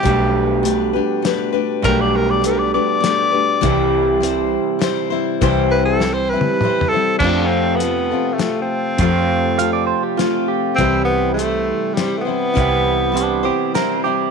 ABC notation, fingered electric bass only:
X:1
M:3/4
L:1/8
Q:1/4=101
K:Flyd
V:1 name="Fingered electric bass" clef=bass
B,,,4 z2 | B,,,4 z2 | C,,4 z2 | C,,4 z2 |
F,,4 z2 | F,,4 z2 | C,,4 z2 | C,,4 z2 |]